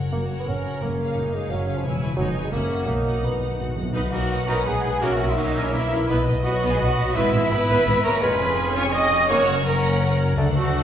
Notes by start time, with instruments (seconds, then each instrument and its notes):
Already playing: harp F#2 C#4, violin section A#4 C#5 F#5
0.12 double bass section F#1, cello section F#2, bassoon A#3, viola section F#4, harp F#4
0.28 violin section A#4 C#5 F#5, harp A#4
0.40 bassoon B3
0.47 double bass section F#1, cello section F#2, harp C#4, bassoon C#4, viola section A#4
0.63 harp C#3, violin section A#4 C#5 F#5
0.82 double bass section F#1, harp F#2, cello section F#2, bassoon A#3, viola section C#4
0.98 harp C#4, violin section G#4 C#5 F5
1.16 double bass section F#1, cello section F#2, viola section D#4, harp F4
1.33 bassoon G#3, violin section G#4 C#5 F5, harp G#4
1.50 double bass section F#1, cello section F#2, bassoon F#3, viola section C#4, harp C#4
1.67 harp C#3, violin section G#4 C#5 F5
1.77 bassoon F3
1.83 double bass section E1, harp E2, cello section E2, viola section E4, violin section B4 C#5 G#5
2.00 harp G#4 B4, violin section B4 C#5 G#5
2.17 double bass section F1, cello section F2, harp F2, bassoon F#3, viola section D#4, violin section B4 C#5 G#5
2.34 harp G#4 B4, violin section B4 C#5 G#5
2.44 bassoon G#3
2.51 double bass section F#1, harp F#2, cello section F#2, bassoon A#3, viola section C#4, violin section F#4 E5 F#5
2.69 violin section F#4 E5 F#5, harp F#4 C#5
2.87 double bass section B1, timpani B2, harp B2, cello section B2, bassoon A#3, viola section D#4
2.95 timpani B2
3.02 timpani B2, harp D#4, violin section F#4 D#5 F#5
3.10 timpani B2
3.17 timpani B2
3.22 double bass section B1, cello section B2, timpani B2, bassoon B3, violin section D#4, harp F#4
3.32 timpani B2
3.39 timpani B2, harp D#5, violin section F#5
3.46 timpani B2, violin section E4
3.54 timpani B2, violin section F#4
3.59 double bass section B1, cello section B2, timpani B2, harp D#4
3.69 timpani B2
3.76 timpani B2, harp F#3, violin section F#5
3.83 timpani B2
3.94 double bass section B1, harp B2, bassoon B3, viola section D#4 B4, clarinet D#5, violin section F#5
4.10 double bass section B1, french horn section F#3, harp F#3, cor anglais A#3, viola section D#4 B4, cello section F#4, violin section F#5, flute section F#5
4.31 double bass section B1, viola section D#4 B4
4.46 double bass section B1, french horn section A#3, cor anglais C#4, viola section D#4 B4, cello section A#4, harp D#5, violin section A#5, flute section A#5
4.65 double bass section B1, french horn section G#3, cor anglais B3, viola section D#4 B4, harp F#4, cello section G#4, violin section G#5, flute section G#5
4.84 double bass section B1, viola section D#4 B4, harp D#4
5.01 double bass section B1, harp B2, french horn section F#3, cor anglais A#3, bassoon A#3, viola section C#4 A#4, cello section F#4, violin section E5 F#5, clarinet E5, flute section F#5
5.19 double bass section B1, harp F#3, viola section C#4 A#4
5.28 french horn section E3, cor anglais G#3, cello section E4, violin section E5, flute section E5
5.37 double bass section B1, french horn section D#3, cor anglais F#3, viola section C#4 A#4, cello section D#4, harp F#4, violin section D#5, flute section D#5
5.56 double bass section B1, viola section C#4 A#4
5.62 french horn section C#3, cor anglais E3, cello section C#4, violin section C#5, flute section C#5
5.71 double bass section B1, french horn section E3, cor anglais A#3, viola section C#4 A#4, cello section E4, harp A#4, violin section E5, flute section E5
5.91 double bass section B1, viola section C#4 A#4, harp F#4
6.08 double bass section B1, harp B2, viola section B3 B4, bassoon B3, violin section D#5, clarinet D#5
6.27 double bass section B1, harp F#3, viola section B3 B4
6.44 double bass section B1, french horn section F#3, cor anglais B3, viola section B3 B4, cello section F#4, violin section F#5, flute section F#5
6.63 double bass section B1, viola section B3 B4, harp D#5
6.70 french horn section G#3, cor anglais B3, cello section G#4, violin section G#5, flute section G#5
6.78 double bass section B1, french horn section F#3, cor anglais B3, viola section B3 B4, cello section F#4, violin section F#5, flute section F#5
6.97 double bass section B1, viola section B3 B4, harp F#4
7.14 double bass section G#1, harp G#2, french horn section E3, cor anglais G#3, viola section B3 B4, cello section E4, violin section E5, clarinet E5, flute section E5
7.33 double bass section G#1, harp G#3, viola section B3 B4
7.49 double bass section G#1, french horn section B3, viola section B3 B4, cor anglais E4, harp G#4, cello section B4, violin section B5, flute section B5
7.68 double bass section G#1, viola section B3 B4, harp E5
7.87 double bass section G#1, viola section B3 B4
8.04 double bass section G#1, french horn section A#3, viola section B3 B4, cor anglais C#4, harp G#4, cello section A#4, violin section A#5, flute section A#5
8.21 double bass section F1, harp F2, bassoon G#3, french horn section B3, viola section C#4 G#4, cor anglais F4, cello section B4, clarinet C#5, violin section G#5 B5, flute section B5
8.40 harp F3
8.59 harp G#4
8.75 french horn section C#4, cor anglais F4, cello section C#5, harp C#5, violin section C#6, flute section C#6
8.93 french horn section D#4, cor anglais F#4, harp G#4, cello section D#5, flute section D#6, violin section D#6
9.12 harp C#4
9.28 double bass section F#1, harp F#2, bassoon A#3, viola section C#4 A#4, french horn section C#4, cor anglais F#4, clarinet C#5, cello section C#5, violin section F#5 C#6, flute section C#6
9.48 harp C#3
9.64 french horn section A#3, cor anglais C#4, viola section C#4 A#4, cello section A#4, violin section F#5 A#5, flute section A#5
9.84 harp C#5
10.02 harp A#4
10.20 harp F#4
10.37 double bass section D2, harp D3, bassoon A3, viola section D4 A4, clarinet D5, violin section F#5
10.55 french horn section F#3, cor anglais A3, harp A3, cello section F#4, violin section F#5, flute section F#5